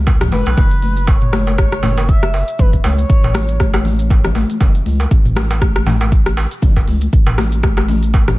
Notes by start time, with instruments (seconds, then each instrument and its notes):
Already playing: analog synth bass C#2
0.07 kick, darbuka tek, cabasa
0.21 cross-stick, closed hi-hat, mid tom, muted conga, low conga, cabasa
0.32 analog synth bass F#1, analog synth lead B4, open hi-hat, darbuka ka, high conga
0.46 analog synth bass B1, closed hi-hat, darbuka tek, cabasa
0.57 analog synth bass F#1, kick, muted conga, darbuka tek, low conga, cabasa
0.71 closed hi-hat, cabasa
0.82 open hi-hat, high conga
0.97 closed hi-hat, muted conga, cabasa
1.07 analog synth lead C#5, kick, darbuka tek, cabasa
1.21 mid tom, cabasa
1.33 cross-stick, open hi-hat, darbuka ka, muted conga, high conga
1.47 closed hi-hat, darbuka tek, cabasa
1.58 analog synth lead C#5, kick, cross-stick, high conga, cabasa
1.72 cross-stick, cabasa
1.83 mid tom, open hi-hat, darbuka ka, muted conga, high conga, low conga
1.97 closed hi-hat, darbuka ka, darbuka tek, cabasa
2.08 analog synth lead E5, kick, cabasa
2.23 cross-stick, closed hi-hat, muted conga, cabasa
2.34 open hi-hat, darbuka tek
2.48 closed hi-hat, cabasa
2.58 analog synth bass F#1, analog synth lead B4, kick, muted conga, low conga, cabasa
2.73 kick, closed hi-hat, cabasa
2.84 analog synth bass C#2, analog synth lead C#5, open hi-hat, darbuka tek, high conga
2.98 closed hi-hat, muted conga, cabasa
3.10 analog synth bass A1, kick, cabasa
3.24 mid tom, darbuka tek, cabasa
3.34 cross-stick, open hi-hat, darbuka ka, muted conga, high conga
3.48 closed hi-hat, cabasa
3.60 kick, cross-stick, high conga, cabasa
3.74 cross-stick, darbuka ka, darbuka tek, high conga, cabasa
3.85 open hi-hat, muted conga, high conga, low conga
3.99 closed hi-hat, cabasa
4.10 kick, darbuka tek, cabasa
4.24 cross-stick, closed hi-hat, muted conga, low conga, cabasa
4.35 open hi-hat, darbuka ka, high conga
4.50 closed hi-hat, cabasa
4.60 analog synth bass F#1, kick, muted conga, darbuka tek, low conga, cabasa
4.75 closed hi-hat, cabasa
4.86 analog synth bass C#2, open hi-hat, high conga
5.00 closed hi-hat, muted conga, darbuka tek, cabasa
5.11 analog synth bass A1, kick, cabasa
5.25 mid tom, cabasa
5.36 cross-stick, open hi-hat, muted conga, darbuka ka, high conga
5.51 closed hi-hat, darbuka tek, cabasa
5.62 kick, cross-stick, high conga, cabasa
5.76 cross-stick, cabasa
5.86 mid tom, open hi-hat, muted conga, darbuka ka, darbuka tek, high conga, low conga
6.01 closed hi-hat, darbuka ka, cabasa
6.12 kick, cabasa
6.26 cross-stick, closed hi-hat, muted conga, cabasa
6.37 open hi-hat, darbuka tek
6.51 closed hi-hat, cabasa
6.62 analog synth bass F#1, kick, muted conga, low conga, cabasa
6.77 kick, closed hi-hat, darbuka tek, cabasa
6.88 analog synth bass C#2, open hi-hat, high conga
7.01 closed hi-hat, muted conga, cabasa
7.13 analog synth bass A1, kick, cabasa
7.27 mid tom, darbuka tek, cabasa
7.38 cross-stick, open hi-hat, muted conga, darbuka ka, high conga
7.52 closed hi-hat, cabasa
7.63 kick, cross-stick, darbuka tek, high conga, cabasa
7.77 cross-stick, darbuka ka, high conga, cabasa
7.89 open hi-hat, muted conga, high conga, low conga
8.03 closed hi-hat, cabasa
8.14 kick, darbuka tek, cabasa
8.28 cross-stick, closed hi-hat, mid tom, muted conga, low conga, cabasa